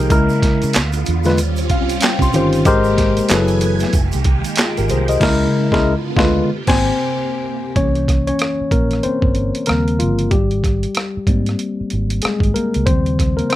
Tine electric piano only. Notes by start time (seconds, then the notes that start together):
Already playing: F3 D#4 G4 G#4 A#4
0.10 C#3 G#3 E4 A#4
1.25 D3 G#3 F4 B4
1.71 F5
2.03 G5
2.22 C6
2.34 D#3 C#4 F4 G4 C5
2.66 G#3 G4 A#4 C5
3.30 F#3 E4 G#4 A4 B4
4.58 F4 G#4
4.78 G4 A#4
4.91 G#4 C5
5.09 C5 D#5
5.20 C#3 G#3 E4 A#4
5.72 C#3 G#3 E4 A#4
6.16 D3 G#3 F4 B4
6.68 C4 C5 G#5
7.76 E3 A#3 C#4 C#5
8.27 C#4 C#5
8.72 A#3 A#4
9.03 C4 C5
9.67 C#3 F3 G3 A#3 C4 A#4
9.99 F3 F4
10.31 G3 G4
11.28 G3 A#3 C4
12.23 G#3 G#4
12.54 A#3 A#4
12.86 C#3 F3 G3 C4 C5
13.37 A#3 A#4
13.50 C4 C5